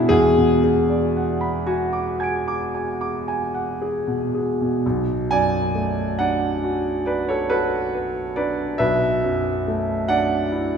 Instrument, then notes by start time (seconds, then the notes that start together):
grand piano
Already playing: B2 C#4 D4 E4 G#4 F#5 G#5 E6
0.09 E1 E2 G#4
0.37 B2
0.64 G#4
0.89 D5
1.17 F#5
1.41 B5
1.66 F#4 G#5
1.93 D6
2.20 G#5 G#6 D7
2.48 D6
2.75 G#5
3.01 D6
3.28 G#5
3.54 F#5
3.82 G#4
4.07 B2
4.35 G#4
4.61 B2
4.86 B1
5.31 F#2 D5 G#5
5.75 A3
6.19 D4 D5 F#5
6.64 F#4
7.06 B4 D5
7.29 A4 C#5
7.50 F#4 A4 B4
7.94 B4
8.36 D4 B4 D5
8.78 B1 B4 E5
9.24 F#2
9.68 A3
10.08 D4 D5 F#5
10.52 E4